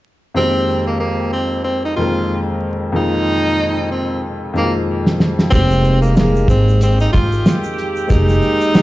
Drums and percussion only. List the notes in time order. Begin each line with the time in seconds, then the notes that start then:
5.06 snare
5.20 snare
5.39 snare
5.52 kick, closed hi-hat, shaker
5.71 shaker
5.84 shaker
6.03 shaker
6.16 snare, closed hi-hat, shaker
6.36 shaker
6.48 kick, shaker
6.69 shaker
6.81 closed hi-hat, shaker
7.00 shaker
7.14 kick, shaker
7.32 shaker
7.46 snare, closed hi-hat, shaker
7.64 shaker
7.78 closed hi-hat, shaker
7.96 shaker
8.10 kick, closed hi-hat, shaker
8.29 snare, shaker
8.42 shaker
8.61 shaker
8.74 snare, closed hi-hat, shaker